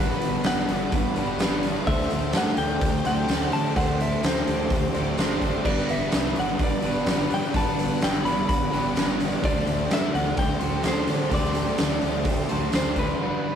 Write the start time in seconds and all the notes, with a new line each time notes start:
Already playing: G2 G3 B3 D4 F#4 G4 F#5 B5 D6
0.00 G1 D3 G3 B3 D4 F#4 B4
0.11 snare
0.22 B3, open hi-hat
0.44 G1 G2 D3 G3 D4 F#5, snare, open hi-hat, tambourine
0.67 G1 D3 G3 F#4, open hi-hat
0.91 G1 G2 D3 G3 D4 F#4 B4, kick, open hi-hat
0.96 G3
1.15 G1 D3 G3 B3 D4 G4 B4, open hi-hat
1.39 G1 G3 B3 D4 B4, snare, open hi-hat, tambourine
1.62 D3 G3 F#4, open hi-hat
1.85 D2 D3 G3 A3 D4 G4 A4 C5 E5 G5 C6, kick, open hi-hat
1.90 C5
2.00 snare
2.10 D2 A3, open hi-hat
2.33 G2 D3 A3 C4 D4, snare, open hi-hat, tambourine
2.37 F#5
2.57 D2 D4 G4 G5, open hi-hat
2.61 A3
2.80 D2 D3 G3 A3 C4 D4 G4, kick, open hi-hat
2.85 C5
3.05 D2 D3 F#3 A3 D4 F#4 C5 G5, open hi-hat
3.09 A3
3.28 D2 D3 A3 D4 C5, snare, open hi-hat, tambourine
3.43 F#5
3.52 D3 A3 D4 G4 A5, open hi-hat
3.75 D2 D3 G3 A3 D4 G4 C5 F#5, kick, open hi-hat
3.80 C5
4.00 A3 E5, open hi-hat
4.23 D2 D3 A3 C4 D4 C5, snare, open hi-hat, tambourine
4.47 D2 A3 D4 G4, open hi-hat
4.69 D2 D3 G3 A3 C4 G4 C5, kick, open hi-hat
4.73 D4
4.94 D2 D3 F#3 A3 D4 F#4 C5, open hi-hat
5.17 F#1 D3 A3 C4 D4 C5, snare, open hi-hat, tambourine
5.41 A3 D4 G4, kick, open hi-hat
5.64 G1 G2 D3 G3 B3 D4 F#4 B4 D5 F#5 B5, kick, crash
5.68 B4
5.78 snare
5.88 G1 B3 E5, open hi-hat
6.11 C2 G2 D3 G3 D4, snare, open hi-hat, tambourine
6.35 G1 D3 G3 F#4, open hi-hat
6.40 F#5
6.58 G1 G2 D3 G3 D4 F#4, kick, open hi-hat
6.63 B4 D5
6.82 G1 D3 G3 B3 D4 G4 B4, open hi-hat
7.06 G1 G3 B3 D4, snare, open hi-hat, tambourine
7.10 B4
7.29 G2 D3 G3 F#4, open hi-hat
7.34 G5
7.53 G1 G2 D3 G3 B3 D4 F#4 B4 A5, kick, open hi-hat
7.57 B4
7.79 B3, open hi-hat
8.00 G1 G2 D3 G3 D4, snare, open hi-hat, tambourine
8.04 G5
8.24 G1 D3 G3 F#4 B5, open hi-hat
8.47 G1 G2 D3 G3 D4 F#4 B5, kick, open hi-hat
8.52 B4
8.71 G1 D3 G3 B3 D4 G4 B4, open hi-hat
8.96 G1 G3 B3 D4 B4, snare, open hi-hat, tambourine
9.18 D3 G3 F#4, open hi-hat
9.41 D2 D3 G3 A3 D4 G4 G5 C6 D6, kick, open hi-hat
9.45 A3 D4 A4 C5 D5
9.67 D2 A3, open hi-hat
9.89 G2 D3 A3 D4, snare, open hi-hat, tambourine
9.93 E5
10.12 D2 A3 D4 G4 F#5, open hi-hat
10.35 D2 D3 G3 A3 C4 D4 G5, kick, open hi-hat
10.40 G4 C5
10.60 D2 D3 F#3 A3 D4 F#4 C5, open hi-hat
10.82 D2 D3 A3 C4 D4 C5, snare, open hi-hat, tambourine
10.87 C5
11.07 D3 A3 D4 G4, open hi-hat
11.30 D2 D3 G3 A3 D4 G4 C5, kick, open hi-hat
11.34 C5 D5
11.44 snare
11.55 A3, open hi-hat
11.76 D2 D3 A3 C4 D4, snare, open hi-hat, tambourine
12.00 D2 A3 D4 G4, open hi-hat
12.22 D2 D3 A3 C4 D4, kick, open hi-hat
12.27 G3 G4 C5
12.47 D2 A3 D4 F#4 C5, open hi-hat
12.51 D3 F#3 A3
12.72 D2 D3 A3 D4 C5, snare, open hi-hat, tambourine
12.94 A3 D4 G4, kick, open hi-hat
12.99 B4
13.17 G2 D3 G3 B3 D4 F#4 B4 F#5 B5 D6
13.22 D4 B4
13.43 D4 F#4 B4